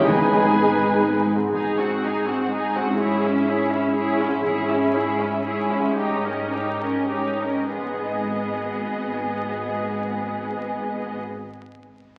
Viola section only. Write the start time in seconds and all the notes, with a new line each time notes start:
0.08 G#4
1.55 D#4
1.79 C4
2.03 D#4
2.27 C4
2.52 D#4
2.76 C4
3.00 E4
3.23 C#4
3.47 E4
3.71 C#4
3.95 E4
4.20 C#4
4.44 E4
4.69 C#4
4.95 E4
5.20 C#4
5.45 E4
5.71 C#4
5.98 D#4
6.25 C#4
6.53 D#4
6.80 C#4
7.09 D#4
7.42 C#4
7.71 B3